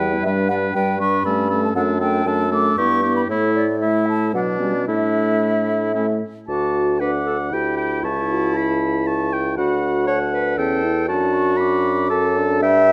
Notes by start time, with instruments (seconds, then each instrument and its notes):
Already playing: bassoon E2, french horn G3, oboe B4
0.00 clarinet B3, flute G5
0.13 clarinet E4
0.23 bassoon G2, french horn G3, clarinet D4, oboe B4, flute E5
0.48 french horn G3, clarinet D4, oboe B4, flute F#5
0.74 bassoon G2, french horn G3, clarinet D4, oboe B4, flute G5
1.00 french horn G3, clarinet D4, oboe B4, flute C#6
1.25 bassoon G2, french horn A3, clarinet C#4, oboe A4, flute B5
1.50 french horn A3, clarinet C#4, oboe A4
1.64 flute A5
1.75 bassoon F#2, french horn A3, clarinet D4, oboe A4, flute F#5
2.01 french horn A3, clarinet D4, oboe A4, flute G5
2.25 bassoon F#2, french horn A3, clarinet D4, oboe A4, flute A5
2.51 french horn A3, clarinet D4, oboe A4, flute D6
2.77 bassoon G2, french horn B3, clarinet E4, oboe G4, flute C#6
3.03 french horn B3, clarinet E4, oboe G4
3.16 flute B5
3.28 bassoon A2, french horn A3, clarinet E4, oboe E4, flute C#5
3.55 flute D5
3.81 french horn A3, clarinet E4, oboe E4, flute E5
4.08 flute A5
4.33 bassoon B2, french horn F#3, clarinet B3, oboe D4, flute F#5
4.59 french horn G3, clarinet C#4, flute D5
4.86 bassoon A2, french horn A3, clarinet D4, oboe E4, flute E5
5.94 french horn A3, clarinet C#4, oboe E4
6.48 bassoon D2, clarinet F#4, french horn F#4, oboe A5, flute D6
7.00 french horn D4, clarinet B4, oboe F#5, flute D6
7.26 clarinet A4
7.50 bassoon D2, french horn E4, clarinet G4, oboe G5, flute B5
7.77 oboe G5
8.02 bassoon C#2, clarinet E4, french horn E4, oboe A5, flute C#6
8.31 french horn F#4
8.54 french horn E4, flute A5, oboe B5
9.07 oboe A5, flute C#6
9.33 oboe G5
9.56 bassoon D2, french horn D4, clarinet F#4, oboe F#5, flute B5
10.07 clarinet C#5, oboe F#5, flute A5
10.32 clarinet B4
10.57 bassoon E2, french horn C#4, clarinet A4, oboe G5, flute A5
10.84 french horn E4
11.08 bassoon F#2, french horn D4, clarinet F#4, flute A5, oboe A5
11.33 flute C#6
11.57 french horn D4, oboe B5, flute D6
12.09 french horn C#4, clarinet A4, oboe A5
12.38 french horn D4
12.62 bassoon G2, clarinet E5, oboe G5, flute B5